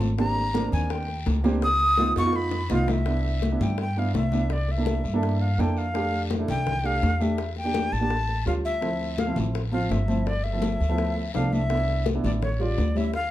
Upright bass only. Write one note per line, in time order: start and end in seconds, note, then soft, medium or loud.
0.00 0.67 G#1 medium
0.72 1.23 D#2 loud
1.26 2.11 C#2 loud
2.16 2.66 F2 loud
2.70 3.55 C2 medium
3.60 4.11 G2 medium
4.14 4.99 C2 medium
5.04 5.54 G2 loud
5.58 6.42 F2 medium
6.48 6.99 C2 medium
7.03 7.87 E2 loud
7.92 8.42 A1 medium
8.46 9.30 D2 loud
9.36 9.87 A1 medium
9.90 10.74 G1 medium
10.80 11.31 D2 medium
11.34 12.18 C2 medium
12.24 12.74 A1 loud
12.78 13.31 D2 medium